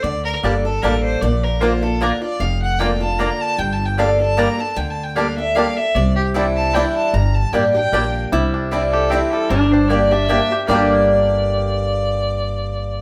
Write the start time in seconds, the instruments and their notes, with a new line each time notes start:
0.03 upright bass D2, steel-string acoustic guitar D3, fiddle D5
0.25 fiddle A#4
0.43 upright bass G1, steel-string acoustic guitar G3 A#3 D4 A4, five-string banjo G3 D4, mandolin A#3 G4 D5 A5
0.65 steel-string acoustic guitar D4 A4, fiddle A4
0.82 upright bass A1, steel-string acoustic guitar G3 A#3 D4 A4, five-string banjo G3 D4, mandolin A#3 G4 D5 A5, fiddle A#4
1.03 fiddle C5
1.22 upright bass A#1, steel-string acoustic guitar A#2, fiddle D5
1.43 fiddle A#4
1.60 steel-string acoustic guitar D3 A#3 D4 F4, mandolin A#3 F4 D5 A#5, five-string banjo A#3 D4, fiddle C5
1.82 steel-string acoustic guitar D4 F4, fiddle A4
2.01 steel-string acoustic guitar D3 A#3 D4 F4, mandolin A#3 F4 D5 A#5, five-string banjo A#3 D4, fiddle A#4
2.22 steel-string acoustic guitar D4 F4, fiddle D5
2.40 upright bass F1, steel-string acoustic guitar F2, fiddle F5
2.62 fiddle F#5
2.79 steel-string acoustic guitar D3 A#3 D4 F4, mandolin A#3 F4 D5 A#5, five-string banjo A#3 D4, fiddle G5
3.00 steel-string acoustic guitar D4 F4, fiddle A5
3.19 steel-string acoustic guitar D3 A#3 D4 F4, mandolin A#3 F4 D5 A#5, five-string banjo A#3 D4, fiddle A#5
3.41 fiddle A5
3.58 upright bass G1, steel-string acoustic guitar G2, fiddle G5
3.73 fiddle A5
3.85 fiddle G5
3.98 steel-string acoustic guitar G3 A#3 D4 A4, five-string banjo G3 D4, mandolin A#3 G4 D5 A5, fiddle F5
4.19 steel-string acoustic guitar D4 A4, fiddle A5
4.37 steel-string acoustic guitar G3 A#3 D4 A4, five-string banjo G3 D4, mandolin A#3 G4 D5 A5, fiddle A#5
4.58 steel-string acoustic guitar D4 A4, fiddle A5
4.76 upright bass D2, steel-string acoustic guitar D3, fiddle G5
4.90 fiddle A5
5.04 fiddle G5
5.16 steel-string acoustic guitar G3 A#3 D4 A4, five-string banjo G3 D4, mandolin A#3 G4 D5 A5, fiddle F5
5.38 steel-string acoustic guitar D4 A4, fiddle E5
5.55 steel-string acoustic guitar G3 A#3 D4 A4, five-string banjo G3 D4, mandolin A#3 G4 D5 A5, fiddle F5
5.77 steel-string acoustic guitar D4 A4, fiddle E5
5.95 upright bass C2, steel-string acoustic guitar C3, fiddle D5
6.16 fiddle G4
6.34 steel-string acoustic guitar E3 G3 D4 E4, five-string banjo G3 C4 D4, mandolin C4 E4 D5 G5
6.56 fiddle A5
6.73 steel-string acoustic guitar E3 G3 D4 E4, five-string banjo G3 C4 D4, mandolin C4 E4 D5 G5, fiddle G5
6.96 fiddle A5
7.13 upright bass G1, steel-string acoustic guitar G2, fiddle A#5
7.34 fiddle A5
7.53 upright bass A1, steel-string acoustic guitar G3 A#3 D4 G4, five-string banjo G3 D4, mandolin A#3 G4 D5 G5, fiddle G5
7.74 steel-string acoustic guitar D4 G4, fiddle G5
7.92 upright bass A#1, steel-string acoustic guitar G3 A#3 D4 G4, five-string banjo G3 D4, mandolin A#3 G4 D5 G5
8.32 upright bass C2, steel-string acoustic guitar C3, five-string banjo G3, resonator guitar played with a steel bar E4
8.54 five-string banjo D4
8.71 steel-string acoustic guitar E3 G3 D4 E4, five-string banjo G3, mandolin C4 E4 D5 G5
8.92 five-string banjo G4, fiddle A4
9.10 steel-string acoustic guitar E3 G3 D4 E4, mandolin C4 E4 D5 G5, five-string banjo C4, fiddle G4
9.32 five-string banjo G3, fiddle A4
9.49 upright bass G1, steel-string acoustic guitar G2, resonator guitar played with a steel bar D4, five-string banjo D4, fiddle A#4
9.72 five-string banjo D4, fiddle C5
9.88 steel-string acoustic guitar G3 A#3 D4 G4, mandolin A#3 G4 D5 G5, five-string banjo G4, fiddle D5
10.11 five-string banjo D4, steel-string acoustic guitar D4 G4, fiddle E5
10.29 steel-string acoustic guitar G3 A#3 D4 G4, mandolin A#3 G4 D5 G5, resonator guitar played with a steel bar C4, five-string banjo D4
10.50 steel-string acoustic guitar D4 G4, five-string banjo G4
10.67 upright bass G1, steel-string acoustic guitar G2 D3 G3 A#3 D4 G4, five-string banjo G3, mandolin A#3 G4 D5 G5, resonator guitar played with a steel bar D4, fiddle D5
10.72 five-string banjo A#3 D4 G4